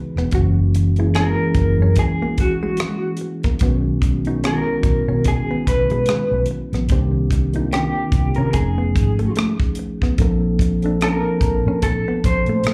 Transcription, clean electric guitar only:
1.15 1.99 A#4 medium
1.99 2.40 G#4 medium
2.40 3.17 F#4 medium
4.47 5.28 A#4 medium
5.28 5.65 G#4 medium
5.68 6.45 B4 medium
7.73 8.36 G4 medium
8.36 8.53 A#4 medium
8.53 9.32 G#4 medium
11.03 11.83 A#4 medium
11.83 12.25 A4 medium
12.25 12.74 C5 medium

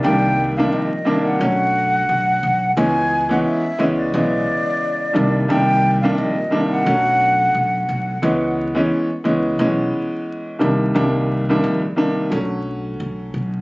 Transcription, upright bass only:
0.04 0.63 C2 loud
0.72 1.02 A#1 loud
1.41 2.00 B1 loud
2.09 2.38 B1 medium
2.43 2.72 B1 medium
2.77 3.36 C#2 loud
3.79 4.09 C#2 medium
4.14 4.43 B1 loud
5.16 5.45 C2 loud
5.50 6.09 C2 loud
6.18 6.47 A#1 loud
6.86 7.45 B1 loud
7.55 7.84 B1 medium
7.89 8.18 B1 medium
8.23 8.82 C#2 loud
9.25 9.54 C#2 medium
9.59 9.88 B1 loud
10.61 10.91 C2 loud
10.95 11.54 C2 loud
11.64 11.93 A#1 loud
12.32 12.91 B1 loud
13.00 13.29 B1 medium
13.34 13.61 B1 medium

